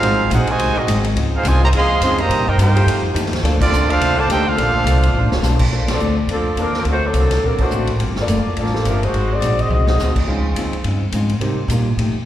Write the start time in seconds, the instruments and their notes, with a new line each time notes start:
Already playing: trombone section F#3 C4 F4, trumpet section D#4 G#4 C5 F5
0.02 upright bass G#1, hollow-body jazz guitar G#2 F#3 C4, grand piano G#3 C4 D#4 F#4 C5, ride
0.07 hollow-body jazz guitar D#4
0.30 upright bass A#1, hollow-body jazz guitar G#2 F#3 C4 D#4, trombone section C4 D#4 F#4, trumpet section G#4, hi-hat pedal, ride
0.34 trumpet section D#4 C5 F#5
0.47 trombone section C3 D#3 G#3, muted upright bass stroke, ride
0.51 trumpet section F#4 C5 D#5 G#5
0.59 upright bass C2, hollow-body jazz guitar G#2 F#3 C4 D#4, ride
0.74 saxophone section D#3 G#3 C4 F#4, trombone section F#3 C4 D#4, muted upright bass stroke
0.79 trumpet section C4 F#4 G#4 D#5
0.87 upright bass G#1, hollow-body jazz guitar G#2 F#3 C4 D#4, hi-hat pedal, ride
1.04 ride
1.15 upright bass C#2, hollow-body jazz guitar C#3 F3 C4 D#4, ride
1.34 trombone section G#3 C4 F4, trumpet section D#4 G#4 C5 F5
1.43 upright bass C2, trombone section C3 F3 G#3, hollow-body jazz guitar C#3 F3 C4 D#4, hi-hat pedal, ride
1.48 trumpet section F4 C5 D#5 G#5
1.61 saxophone section D#3 C4 C#4 F4, trombone section A#3, trumpet section G4 C5 D#5 A#5
1.72 upright bass D#2, hollow-body jazz guitar C#3 F3 C4, trombone section F3 G#3 C4, trumpet section G#4 D#5 F5 C6, ride
1.76 hollow-body jazz guitar D#4
2.00 upright bass F2, hollow-body jazz guitar C#3 F3 C4 D#4, trombone section F3 G#3 C4, grand piano G#3 C#4 D#4 F4 C5, trumpet section F5, hi-hat pedal, ride
2.04 trumpet section G#4 D#5 C6
2.18 trombone section D#3 G3 A#3, trumpet section G4 C5 D#5 A#5, ride
2.29 upright bass C3, hollow-body jazz guitar C3 G3 A#3 D#4, ride
2.38 upright bass A#2
2.46 upright bass G2, trombone section A#3 D#4 G4, trumpet section D#4 A#4 C5 G5
2.58 upright bass G2, hollow-body jazz guitar C3 G3 A#3 D#4, trombone section A#3 D#4 G4, trumpet section D#4 A#4 C5 G5, hi-hat pedal, ride
2.75 saxophone section F3 A3 D#4 G4, grand piano A3 D#4 F4 G4 C5, ride
2.86 upright bass F2, hollow-body jazz guitar F3 A3 D#4 G4, ride
3.14 upright bass D#2, hollow-body jazz guitar F3 A3 D#4 G4, hi-hat pedal, ride
3.26 snare
3.33 snare, ride
3.43 upright bass D2, hollow-body jazz guitar A#3 D4 A4 C5, grand piano A#3 D4 F4 A4 C5, snare, ride
3.59 trombone section F3 A3 D4, trumpet section C4 F4 A4 D5, kick, crash
3.70 upright bass C#2, hollow-body jazz guitar A#3 D4 A4 C5, hi-hat pedal
3.87 trombone section A3 D4 F4, trumpet section D4 A4 C5 F5, muted upright bass stroke, ride
3.99 upright bass C2, hollow-body jazz guitar A#3 D4 A4 C5, ride
4.16 saxophone section D3 A#3 C4 A4, trombone section D3 F3 A3, trumpet section F4 C5 D5 A5
4.28 upright bass D2, hollow-body jazz guitar A#3 D4 A4 C5, trombone section G4, hi-hat pedal, ride
4.32 trumpet section D#4 A4 C5 G5
4.46 trombone section A3 D4 F4, trumpet section D4 A4 C5 F5
4.56 upright bass A#1, saxophone section A#2 D3 C4 A4, hollow-body jazz guitar A#3 D4 A4 C5, grand piano A#3 D4 F4 A4 C5, ride
4.84 upright bass C2, hollow-body jazz guitar A#3 D4 A4 C5, hi-hat pedal, ride
5.03 ride
5.13 upright bass A1, hollow-body jazz guitar A#3 D4 A4 C5
5.23 upright bass F1
5.32 upright bass D1, snare
5.42 upright bass B1, hollow-body jazz guitar A#3 D4 A4 C5, snare, hi-hat pedal
5.59 kick, crash
5.70 upright bass A#1, hollow-body jazz guitar A#3 D4 A4 C5, grand piano A#3 D4 F4 A4 C5
5.88 saxophone section A4 D5, snare, ride
5.92 saxophone section C4 F4
5.99 upright bass D2, hollow-body jazz guitar A#3 D4 A4 C5, hi-hat pedal
6.27 upright bass F2, hollow-body jazz guitar A#3 D4, ride
6.31 saxophone section F3 C4 D4 A4, hollow-body jazz guitar A4 C5
6.56 upright bass D#2, hollow-body jazz guitar A#3 D4 A4 C5, hi-hat pedal, ride
6.61 saxophone section F3 C4 D4 A#4
6.74 snare
6.78 saxophone section F3 C4 D4 A#4
6.85 upright bass D2, hollow-body jazz guitar D3 A#3 C4 F#4, ride
6.90 saxophone section A3 D4 F#4 C5
7.06 saxophone section F#3 C4 D4 A4
7.13 upright bass C2, hollow-body jazz guitar D3 A#3 C4 F#4, hi-hat pedal, ride
7.31 snare, ride
7.42 upright bass A#1, hollow-body jazz guitar D3 A#3 C4 F#4
7.46 saxophone section F#3 C4 D4 A#4
7.58 grand piano A#3 D4 F#4 A4 C5, muted upright bass stroke, kick, crash
7.63 saxophone section A3 D4 F#4 C5
7.70 upright bass A1, hollow-body jazz guitar D3 A#3 C4 F#4, hi-hat pedal
7.87 ride
7.98 upright bass G1, hollow-body jazz guitar G2 F3 A#3 C4, ride
8.16 snare
8.20 saxophone section A#3 F4 A4 D5
8.27 upright bass F1, hollow-body jazz guitar G2 F3 A#3 C4, hi-hat pedal, ride
8.44 muted upright bass stroke
8.55 upright bass A1, hollow-body jazz guitar G2 F3 A#3, ride
8.60 saxophone section F3 A#3 D4 A4, hollow-body jazz guitar C4
8.66 snare
8.74 grand piano A#3 F4 G4 A4 C5, snare
8.84 upright bass G1, hollow-body jazz guitar G2 F3 A#3 C4, saxophone section F3 A3 D4 A#4, hi-hat pedal, ride
9.03 saxophone section G#3 D#4 F#4 C5, ride
9.12 upright bass G#1, hollow-body jazz guitar G#2 F#3 C4 D#4, ride
9.33 saxophone section C4 F#4 G#4 D5
9.40 upright bass A#1, hollow-body jazz guitar G#2 F#3 C4 D#4, hi-hat pedal, ride
9.59 saxophone section C4 F#4 G#4 D#5, ride
9.69 upright bass C2, hollow-body jazz guitar G#2 F#3 C4, high tom
9.73 hollow-body jazz guitar D#4
9.87 grand piano G#3 C4 D#4 F#4 C5, snare
9.98 upright bass D2, hollow-body jazz guitar G#2 F#3 C4 D#4, snare, hi-hat pedal
10.16 kick, crash
10.27 upright bass C#2, hollow-body jazz guitar C#3 F3 C4 D#4, grand piano G#3 C#4 D#4 F4 C5
10.54 upright bass D#2, hollow-body jazz guitar C#3 F3 C4, hi-hat pedal, ride
10.58 hollow-body jazz guitar D#4
10.72 muted upright bass stroke, ride
10.84 upright bass G2, hollow-body jazz guitar C#3 F3 C4 D#4, ride
11.12 upright bass G#2, hollow-body jazz guitar C#3 F3 C4 D#4, hi-hat pedal, ride
11.29 ride
11.39 upright bass C3, hollow-body jazz guitar C3 G3 A#3, grand piano A#3 C4 D#4 G4 C5, ride
11.44 hollow-body jazz guitar D#4
11.68 upright bass A#2, hollow-body jazz guitar C3 G3 A#3 D#4, hi-hat pedal, ride
11.97 upright bass A2, hollow-body jazz guitar F3 A3 D#4 G4, ride
12.14 muted upright bass stroke